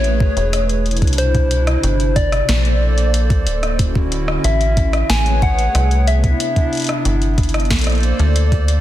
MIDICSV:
0, 0, Header, 1, 5, 480
1, 0, Start_track
1, 0, Tempo, 652174
1, 871, Time_signature, 4, 2, 24, 8
1, 6482, End_track
2, 0, Start_track
2, 0, Title_t, "Soft synth lead"
2, 0, Program_c, 0, 80
2, 0, Note_on_c, 0, 73, 101
2, 630, Note_off_c, 0, 73, 0
2, 871, Note_on_c, 0, 72, 101
2, 1589, Note_on_c, 0, 74, 120
2, 1600, Note_off_c, 0, 72, 0
2, 2310, Note_off_c, 0, 74, 0
2, 3272, Note_on_c, 0, 76, 98
2, 3751, Note_on_c, 0, 80, 115
2, 3762, Note_off_c, 0, 76, 0
2, 3989, Note_off_c, 0, 80, 0
2, 3993, Note_on_c, 0, 78, 115
2, 4472, Note_on_c, 0, 76, 97
2, 4483, Note_off_c, 0, 78, 0
2, 5431, Note_off_c, 0, 76, 0
2, 6482, End_track
3, 0, Start_track
3, 0, Title_t, "Analog synth pad"
3, 0, Program_c, 1, 89
3, 0, Note_on_c, 1, 57, 77
3, 0, Note_on_c, 1, 68, 71
3, 0, Note_on_c, 1, 71, 71
3, 0, Note_on_c, 1, 73, 86
3, 623, Note_off_c, 1, 57, 0
3, 623, Note_off_c, 1, 68, 0
3, 623, Note_off_c, 1, 71, 0
3, 623, Note_off_c, 1, 73, 0
3, 630, Note_on_c, 1, 48, 85
3, 630, Note_on_c, 1, 62, 76
3, 631, Note_on_c, 1, 47, 75
3, 631, Note_on_c, 1, 64, 92
3, 1818, Note_off_c, 1, 48, 0
3, 1818, Note_off_c, 1, 62, 0
3, 1819, Note_off_c, 1, 47, 0
3, 1819, Note_off_c, 1, 64, 0
3, 1830, Note_on_c, 1, 72, 74
3, 1831, Note_on_c, 1, 58, 82
3, 1831, Note_on_c, 1, 69, 75
3, 1831, Note_on_c, 1, 74, 90
3, 2781, Note_off_c, 1, 58, 0
3, 2781, Note_off_c, 1, 69, 0
3, 2781, Note_off_c, 1, 72, 0
3, 2781, Note_off_c, 1, 74, 0
3, 2790, Note_on_c, 1, 64, 77
3, 2790, Note_on_c, 1, 66, 91
3, 2791, Note_on_c, 1, 50, 82
3, 2791, Note_on_c, 1, 61, 76
3, 3741, Note_off_c, 1, 50, 0
3, 3741, Note_off_c, 1, 61, 0
3, 3741, Note_off_c, 1, 64, 0
3, 3741, Note_off_c, 1, 66, 0
3, 3751, Note_on_c, 1, 57, 78
3, 3751, Note_on_c, 1, 68, 72
3, 3751, Note_on_c, 1, 71, 71
3, 3751, Note_on_c, 1, 73, 88
3, 4464, Note_off_c, 1, 57, 0
3, 4464, Note_off_c, 1, 68, 0
3, 4464, Note_off_c, 1, 71, 0
3, 4464, Note_off_c, 1, 73, 0
3, 4471, Note_on_c, 1, 48, 85
3, 4471, Note_on_c, 1, 59, 77
3, 4471, Note_on_c, 1, 62, 77
3, 4471, Note_on_c, 1, 64, 92
3, 5659, Note_off_c, 1, 48, 0
3, 5659, Note_off_c, 1, 59, 0
3, 5659, Note_off_c, 1, 62, 0
3, 5659, Note_off_c, 1, 64, 0
3, 5670, Note_on_c, 1, 58, 79
3, 5670, Note_on_c, 1, 69, 76
3, 5670, Note_on_c, 1, 72, 75
3, 5671, Note_on_c, 1, 74, 90
3, 6482, Note_off_c, 1, 58, 0
3, 6482, Note_off_c, 1, 69, 0
3, 6482, Note_off_c, 1, 72, 0
3, 6482, Note_off_c, 1, 74, 0
3, 6482, End_track
4, 0, Start_track
4, 0, Title_t, "FM bass"
4, 0, Program_c, 2, 39
4, 0, Note_on_c, 2, 33, 95
4, 221, Note_off_c, 2, 33, 0
4, 271, Note_on_c, 2, 28, 98
4, 750, Note_on_c, 2, 36, 87
4, 761, Note_off_c, 2, 28, 0
4, 1301, Note_off_c, 2, 36, 0
4, 1351, Note_on_c, 2, 31, 87
4, 1781, Note_off_c, 2, 31, 0
4, 1831, Note_on_c, 2, 34, 85
4, 2551, Note_on_c, 2, 26, 97
4, 2562, Note_off_c, 2, 34, 0
4, 3221, Note_off_c, 2, 26, 0
4, 3271, Note_on_c, 2, 33, 85
4, 3702, Note_off_c, 2, 33, 0
4, 3751, Note_on_c, 2, 33, 85
4, 4182, Note_off_c, 2, 33, 0
4, 4231, Note_on_c, 2, 36, 104
4, 4661, Note_off_c, 2, 36, 0
4, 5191, Note_on_c, 2, 31, 86
4, 5671, Note_on_c, 2, 34, 88
4, 5682, Note_off_c, 2, 31, 0
4, 5982, Note_off_c, 2, 34, 0
4, 6031, Note_on_c, 2, 38, 81
4, 6462, Note_off_c, 2, 38, 0
4, 6482, End_track
5, 0, Start_track
5, 0, Title_t, "Drums"
5, 31, Note_on_c, 9, 42, 41
5, 104, Note_off_c, 9, 42, 0
5, 150, Note_on_c, 9, 36, 116
5, 224, Note_off_c, 9, 36, 0
5, 271, Note_on_c, 9, 42, 41
5, 344, Note_off_c, 9, 42, 0
5, 391, Note_on_c, 9, 37, 54
5, 391, Note_on_c, 9, 42, 98
5, 465, Note_off_c, 9, 37, 0
5, 465, Note_off_c, 9, 42, 0
5, 511, Note_on_c, 9, 42, 42
5, 585, Note_off_c, 9, 42, 0
5, 631, Note_on_c, 9, 42, 31
5, 671, Note_off_c, 9, 42, 0
5, 671, Note_on_c, 9, 42, 36
5, 711, Note_off_c, 9, 42, 0
5, 711, Note_on_c, 9, 42, 42
5, 750, Note_off_c, 9, 42, 0
5, 750, Note_on_c, 9, 36, 82
5, 750, Note_on_c, 9, 42, 48
5, 790, Note_off_c, 9, 42, 0
5, 790, Note_on_c, 9, 42, 55
5, 824, Note_off_c, 9, 36, 0
5, 830, Note_off_c, 9, 42, 0
5, 830, Note_on_c, 9, 42, 60
5, 870, Note_off_c, 9, 42, 0
5, 870, Note_on_c, 9, 42, 96
5, 944, Note_off_c, 9, 42, 0
5, 990, Note_on_c, 9, 36, 86
5, 991, Note_on_c, 9, 42, 41
5, 1064, Note_off_c, 9, 36, 0
5, 1064, Note_off_c, 9, 42, 0
5, 1111, Note_on_c, 9, 42, 69
5, 1184, Note_off_c, 9, 42, 0
5, 1231, Note_on_c, 9, 37, 83
5, 1231, Note_on_c, 9, 42, 41
5, 1304, Note_off_c, 9, 37, 0
5, 1304, Note_off_c, 9, 42, 0
5, 1351, Note_on_c, 9, 42, 96
5, 1424, Note_off_c, 9, 42, 0
5, 1471, Note_on_c, 9, 42, 42
5, 1545, Note_off_c, 9, 42, 0
5, 1590, Note_on_c, 9, 36, 105
5, 1591, Note_on_c, 9, 42, 70
5, 1664, Note_off_c, 9, 36, 0
5, 1664, Note_off_c, 9, 42, 0
5, 1711, Note_on_c, 9, 37, 80
5, 1711, Note_on_c, 9, 42, 42
5, 1784, Note_off_c, 9, 37, 0
5, 1784, Note_off_c, 9, 42, 0
5, 1831, Note_on_c, 9, 38, 121
5, 1831, Note_on_c, 9, 42, 95
5, 1904, Note_off_c, 9, 38, 0
5, 1904, Note_off_c, 9, 42, 0
5, 1951, Note_on_c, 9, 42, 41
5, 2024, Note_off_c, 9, 42, 0
5, 2191, Note_on_c, 9, 42, 41
5, 2264, Note_off_c, 9, 42, 0
5, 2311, Note_on_c, 9, 42, 97
5, 2384, Note_off_c, 9, 42, 0
5, 2430, Note_on_c, 9, 36, 109
5, 2431, Note_on_c, 9, 42, 41
5, 2504, Note_off_c, 9, 36, 0
5, 2504, Note_off_c, 9, 42, 0
5, 2551, Note_on_c, 9, 42, 70
5, 2625, Note_off_c, 9, 42, 0
5, 2671, Note_on_c, 9, 37, 64
5, 2671, Note_on_c, 9, 42, 42
5, 2745, Note_off_c, 9, 37, 0
5, 2745, Note_off_c, 9, 42, 0
5, 2791, Note_on_c, 9, 36, 87
5, 2791, Note_on_c, 9, 42, 93
5, 2864, Note_off_c, 9, 36, 0
5, 2864, Note_off_c, 9, 42, 0
5, 2910, Note_on_c, 9, 36, 88
5, 2984, Note_off_c, 9, 36, 0
5, 3031, Note_on_c, 9, 42, 66
5, 3105, Note_off_c, 9, 42, 0
5, 3150, Note_on_c, 9, 37, 78
5, 3224, Note_off_c, 9, 37, 0
5, 3270, Note_on_c, 9, 42, 95
5, 3344, Note_off_c, 9, 42, 0
5, 3391, Note_on_c, 9, 42, 40
5, 3464, Note_off_c, 9, 42, 0
5, 3510, Note_on_c, 9, 42, 66
5, 3511, Note_on_c, 9, 36, 107
5, 3584, Note_off_c, 9, 36, 0
5, 3584, Note_off_c, 9, 42, 0
5, 3631, Note_on_c, 9, 37, 75
5, 3631, Note_on_c, 9, 42, 41
5, 3704, Note_off_c, 9, 37, 0
5, 3704, Note_off_c, 9, 42, 0
5, 3751, Note_on_c, 9, 38, 125
5, 3751, Note_on_c, 9, 42, 93
5, 3824, Note_off_c, 9, 38, 0
5, 3824, Note_off_c, 9, 42, 0
5, 3871, Note_on_c, 9, 42, 41
5, 3944, Note_off_c, 9, 42, 0
5, 3991, Note_on_c, 9, 36, 127
5, 3991, Note_on_c, 9, 42, 37
5, 4064, Note_off_c, 9, 36, 0
5, 4064, Note_off_c, 9, 42, 0
5, 4111, Note_on_c, 9, 42, 40
5, 4185, Note_off_c, 9, 42, 0
5, 4231, Note_on_c, 9, 37, 52
5, 4231, Note_on_c, 9, 42, 97
5, 4305, Note_off_c, 9, 37, 0
5, 4305, Note_off_c, 9, 42, 0
5, 4351, Note_on_c, 9, 42, 40
5, 4424, Note_off_c, 9, 42, 0
5, 4471, Note_on_c, 9, 42, 66
5, 4545, Note_off_c, 9, 42, 0
5, 4591, Note_on_c, 9, 36, 85
5, 4591, Note_on_c, 9, 42, 40
5, 4664, Note_off_c, 9, 36, 0
5, 4665, Note_off_c, 9, 42, 0
5, 4711, Note_on_c, 9, 42, 89
5, 4785, Note_off_c, 9, 42, 0
5, 4831, Note_on_c, 9, 36, 83
5, 4831, Note_on_c, 9, 42, 39
5, 4904, Note_off_c, 9, 36, 0
5, 4905, Note_off_c, 9, 42, 0
5, 4951, Note_on_c, 9, 42, 29
5, 4968, Note_off_c, 9, 42, 0
5, 4968, Note_on_c, 9, 42, 34
5, 4985, Note_off_c, 9, 42, 0
5, 4985, Note_on_c, 9, 42, 38
5, 5002, Note_off_c, 9, 42, 0
5, 5002, Note_on_c, 9, 42, 43
5, 5020, Note_off_c, 9, 42, 0
5, 5020, Note_on_c, 9, 42, 48
5, 5037, Note_off_c, 9, 42, 0
5, 5037, Note_on_c, 9, 42, 52
5, 5054, Note_off_c, 9, 42, 0
5, 5054, Note_on_c, 9, 42, 56
5, 5071, Note_on_c, 9, 37, 76
5, 5127, Note_off_c, 9, 42, 0
5, 5144, Note_off_c, 9, 37, 0
5, 5191, Note_on_c, 9, 42, 91
5, 5265, Note_off_c, 9, 42, 0
5, 5311, Note_on_c, 9, 42, 39
5, 5385, Note_off_c, 9, 42, 0
5, 5431, Note_on_c, 9, 36, 108
5, 5432, Note_on_c, 9, 42, 61
5, 5471, Note_off_c, 9, 42, 0
5, 5471, Note_on_c, 9, 42, 49
5, 5504, Note_off_c, 9, 36, 0
5, 5512, Note_off_c, 9, 42, 0
5, 5512, Note_on_c, 9, 42, 40
5, 5551, Note_off_c, 9, 42, 0
5, 5551, Note_on_c, 9, 37, 75
5, 5551, Note_on_c, 9, 42, 38
5, 5592, Note_off_c, 9, 42, 0
5, 5592, Note_on_c, 9, 42, 28
5, 5625, Note_off_c, 9, 37, 0
5, 5632, Note_off_c, 9, 42, 0
5, 5632, Note_on_c, 9, 42, 23
5, 5671, Note_off_c, 9, 42, 0
5, 5671, Note_on_c, 9, 36, 89
5, 5671, Note_on_c, 9, 38, 119
5, 5671, Note_on_c, 9, 42, 40
5, 5691, Note_off_c, 9, 42, 0
5, 5691, Note_on_c, 9, 42, 47
5, 5711, Note_off_c, 9, 42, 0
5, 5711, Note_on_c, 9, 42, 55
5, 5731, Note_off_c, 9, 42, 0
5, 5731, Note_on_c, 9, 42, 63
5, 5744, Note_off_c, 9, 36, 0
5, 5745, Note_off_c, 9, 38, 0
5, 5751, Note_off_c, 9, 42, 0
5, 5751, Note_on_c, 9, 42, 70
5, 5771, Note_off_c, 9, 42, 0
5, 5771, Note_on_c, 9, 42, 78
5, 5791, Note_on_c, 9, 37, 58
5, 5811, Note_off_c, 9, 42, 0
5, 5811, Note_on_c, 9, 42, 30
5, 5831, Note_off_c, 9, 42, 0
5, 5831, Note_on_c, 9, 42, 25
5, 5851, Note_off_c, 9, 42, 0
5, 5851, Note_on_c, 9, 42, 20
5, 5864, Note_off_c, 9, 37, 0
5, 5871, Note_off_c, 9, 42, 0
5, 5871, Note_on_c, 9, 42, 17
5, 5891, Note_off_c, 9, 42, 0
5, 5891, Note_on_c, 9, 42, 14
5, 5911, Note_off_c, 9, 42, 0
5, 5911, Note_on_c, 9, 42, 37
5, 5984, Note_off_c, 9, 42, 0
5, 6031, Note_on_c, 9, 42, 39
5, 6105, Note_off_c, 9, 42, 0
5, 6151, Note_on_c, 9, 42, 90
5, 6225, Note_off_c, 9, 42, 0
5, 6271, Note_on_c, 9, 36, 109
5, 6271, Note_on_c, 9, 42, 39
5, 6345, Note_off_c, 9, 36, 0
5, 6345, Note_off_c, 9, 42, 0
5, 6391, Note_on_c, 9, 42, 64
5, 6465, Note_off_c, 9, 42, 0
5, 6482, End_track
0, 0, End_of_file